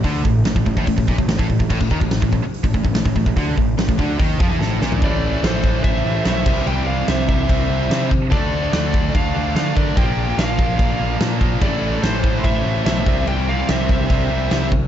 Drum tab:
CC |----------------|x---------------|----------------|x---x---x---x-x-|
HH |o---o---o---o---|----o---o---o---|o---o---o-------|----------------|
SD |----o-------o---|----o-------o---|----o-------o-o-|----o-------o---|
FT |----------------|----------------|---------------o|----------------|
BD |o-o--ooooooo-ooo|oooo-oo--ooo-ooo|o-o--oo-o-o-----|o-----o-o-----o-|

CC |x---x---x---x---|x---x---x---x---|x---x---x---x---|x---x---x---x---|
HH |----------------|----------------|----------------|----------------|
SD |----o-------o---|----o-------o---|----o-------o---|----o-------o---|
FT |----------------|----------------|----------------|----------------|
BD |------o-o-----o-|o-----o-o-----o-|o-----o-o-----o-|o-----o-o-----o-|

CC |x---x---x---x---|
HH |----------------|
SD |----o-------o---|
FT |----------------|
BD |------o-o-----o-|